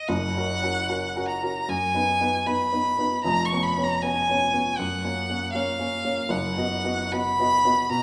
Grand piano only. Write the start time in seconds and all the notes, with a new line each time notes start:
0.09 F#1 F#2
0.37 C#4 F#4 A#4
0.62 C#4 F#4 A#4
0.89 C#4 F#4 A#4
1.16 C#4 F#4 A#4
1.42 C#4 F#4 A#4
1.69 F#2
1.95 B3 D#4 B4
2.21 B3 D#4 B4
2.46 B3 D#4 B4
2.72 B3 D#4 B4
2.99 B3 D#4 B4
3.24 F1 F2
3.52 B3 C#4 C#5
3.78 B3 C#4 C#5
4.03 B3 C#4 C#5
4.30 B3 C#4 C#5
4.54 B3 C#4 C#5
4.79 F#2
5.05 A#3 C#4 C#5
5.30 A#3 C#4 C#5
5.55 A#3 C#4 C#5
5.79 A#3 C#4 C#5
6.05 A#3 C#4 C#5
6.29 F#1 F#2
6.58 B3 F#4 D#5
6.84 B3 F#4 D#5
7.13 B3 F#4 D#5
7.40 B3 F#4 D#5
7.65 B3 F#4 D#5
7.90 B2